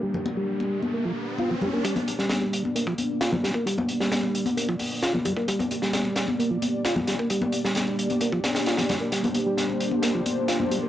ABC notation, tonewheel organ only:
X:1
M:4/4
L:1/16
Q:1/4=132
K:Gm
V:1 name="Tonewheel organ" clef=bass
G, z2 G,4 z B, F, z2 F F, G, B, | G, z2 G,4 z B, F, z2 F F, G, B, | G, z2 G,4 z B, F, z2 F F, G, B, | G, z2 G,4 z B, F, z2 F F, G, B, |
G, z2 G,4 z B, F, z2 F F, G, B, | G, z2 G,4 z B, F, z2 F F, G, B, |]